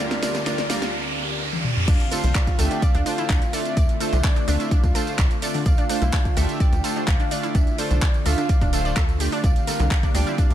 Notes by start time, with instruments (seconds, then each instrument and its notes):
Already playing: analog synth pad D2 D3 C4 G4, riser
0.00 supersaw synth G3 D4 F4 A#4, soft synth lead D5
0.11 snare, closed hi-hat, tambourine
0.22 supersaw synth G3 D4 F4 A#4, synth pluck D5, snare, open hi-hat, tambourine
0.35 snare, closed hi-hat, tambourine
0.46 supersaw synth G3 D4 F4 A#4, synth pluck D5, snare, closed hi-hat, tambourine
0.58 snare, closed hi-hat, tambourine
0.70 supersaw synth G3 D4 F4 A#4, synth pluck D5, soft synth lead F5, snare, open hi-hat, tambourine
0.82 snare, closed hi-hat, tambourine
1.53 high tom
1.64 mid tom
1.76 mid tom
1.88 analog synth bass D2, analog synth pad D3 A3 C4 F4, synth pluck D4 D5, soft synth lead F5, kick, closed hi-hat, crash, tambourine
2.00 closed hi-hat, tambourine
2.11 supersaw synth A3 D4 F4 C5, synth pluck A4 A5, open hi-hat, tambourine
2.24 analog synth bass C2, closed hi-hat, tambourine
2.35 synth pluck D5 D6, kick, clap, open hi-hat, tambourine
2.47 kick, closed hi-hat, tambourine
2.59 analog synth bass D2, supersaw synth A3 D4 F4 E5, synth pluck A4 A5, soft synth lead G5, open hi-hat, tambourine
2.71 synth pluck D3 D4, closed hi-hat, tambourine
2.82 synth pluck D5 D6, soft synth lead F5, kick, closed hi-hat, tambourine
2.94 analog synth bass D2, synth pluck D4 D5, closed hi-hat, tambourine
3.06 supersaw synth A3 D4 F4 C5, synth pluck D4 D5, open hi-hat, tambourine
3.18 synth pluck E4 E5, closed hi-hat, tambourine
3.30 analog synth bass D2, synth pluck D4 D5, kick, clap, closed hi-hat, tambourine
3.42 closed hi-hat, tambourine
3.53 supersaw synth A3 D4 F4 D5, synth pluck A4 A5, soft synth lead E5, open hi-hat, tambourine
3.65 closed hi-hat, tambourine
3.77 analog synth bass D2, synth pluck D5 D6, kick, closed hi-hat, tambourine
3.89 closed hi-hat, tambourine
4.00 supersaw synth A3 D4 F4 C5, synth pluck A4 A5, open hi-hat, tambourine
4.13 analog synth bass C2, synth pluck D3 D4, closed hi-hat, tambourine
4.24 synth pluck D5 D6, soft synth lead D5, kick, clap, closed hi-hat, tambourine
4.36 synth pluck D4 D5, closed hi-hat, tambourine
4.48 analog synth bass D2, supersaw synth A3 D4 F4 E5, synth pluck D4 D5, open hi-hat, tambourine
4.60 synth pluck E4 E5, closed hi-hat, tambourine
4.71 synth pluck D4 D5, soft synth lead F5, kick, closed hi-hat, tambourine
4.84 analog synth bass D2, kick, closed hi-hat, tambourine
4.95 supersaw synth A3 D4 F4 C5, synth pluck A4 A5, open hi-hat, tambourine
5.07 closed hi-hat, tambourine
5.19 analog synth bass D2, synth pluck D5 D6, kick, clap, closed hi-hat, tambourine
5.31 closed hi-hat, tambourine
5.42 supersaw synth A3 D4 F4 D5, synth pluck A4 A5, open hi-hat, tambourine
5.54 synth pluck D3 D4, open hi-hat, tambourine
5.66 analog synth bass D2, analog synth pad D4, synth pluck D5 D6, soft synth lead F5, kick, closed hi-hat, tambourine
5.78 synth pluck D4 D5, closed hi-hat, tambourine
5.89 supersaw synth A3 D4 F4 C5, synth pluck D4 D5, open hi-hat, tambourine
6.02 analog synth bass C2, synth pluck E4 E5, closed hi-hat, tambourine
6.13 synth pluck D4 D5, kick, clap, open hi-hat, tambourine
6.25 kick, closed hi-hat, tambourine
6.37 analog synth bass D2, supersaw synth A3 D4 F4 E5, synth pluck A4 A5, soft synth lead G5, open hi-hat, tambourine
6.49 closed hi-hat, tambourine
6.60 synth pluck D5 D6, kick, closed hi-hat, tambourine
6.72 analog synth bass D2, closed hi-hat, tambourine
6.84 supersaw synth A3 D4 F4 C5, synth pluck A4 A5, open hi-hat, tambourine
6.96 synth pluck D3 D4, closed hi-hat, tambourine
7.08 analog synth bass D2, synth pluck D5 D6, soft synth lead F5, kick, clap, closed hi-hat, tambourine
7.20 synth pluck D4 D5, closed hi-hat, tambourine
7.31 supersaw synth A3 D4 F4 D5, synth pluck D4 D5, open hi-hat, tambourine
7.43 synth pluck E4 E5, closed hi-hat, tambourine
7.55 analog synth bass D2, synth pluck D4 D5, soft synth lead E5, kick, closed hi-hat, tambourine
7.67 closed hi-hat, tambourine
7.78 supersaw synth A3 D4 F4 C5, synth pluck A4 A5, soft synth lead D5, open hi-hat, tambourine
7.91 analog synth bass C2, closed hi-hat, tambourine
8.02 synth pluck D5 D6, kick, clap, closed hi-hat, tambourine
8.14 closed hi-hat, tambourine
8.26 analog synth bass D2, supersaw synth A3 D4 F4 E5, synth pluck A4 A5, soft synth lead F5, open hi-hat, tambourine
8.38 synth pluck D3 D4, closed hi-hat, tambourine
8.49 synth pluck D5 D6, kick, closed hi-hat, tambourine
8.61 analog synth bass D1, synth pluck D4 D5, kick, closed hi-hat, tambourine
8.73 supersaw synth A3 D4 F4 C5, synth pluck A4 A5, open hi-hat, tambourine
8.85 synth pluck D5 D6, closed hi-hat, tambourine
8.96 analog synth bass D2, synth pluck A4 A5, kick, clap, closed hi-hat, tambourine
9.09 closed hi-hat, tambourine
9.20 supersaw synth A3 D4 F4 D5, synth pluck G4 G5, open hi-hat, tambourine
9.32 synth pluck D4 D5, open hi-hat, tambourine
9.44 analog synth bass D2, analog synth pad A#3 C4 G4, synth pluck D5 D6, soft synth lead F5, kick, closed hi-hat, tambourine
9.56 closed hi-hat, tambourine
9.67 supersaw synth G3 D4 F4 A#4, synth pluck A4 A5, open hi-hat, tambourine
9.80 analog synth bass C2, synth pluck D3 D4, closed hi-hat, tambourine
9.91 synth pluck D5 D6, kick, clap, open hi-hat, tambourine
10.03 synth pluck D4 D5, kick, closed hi-hat, tambourine
10.15 analog synth bass D2, supersaw synth G3 D4 F4 D5, synth pluck D4 D5, soft synth lead G5, open hi-hat, tambourine
10.27 synth pluck E4 E5, closed hi-hat, tambourine
10.38 synth pluck D4 D5, soft synth lead F5, kick, closed hi-hat, tambourine
10.50 analog synth bass D2, closed hi-hat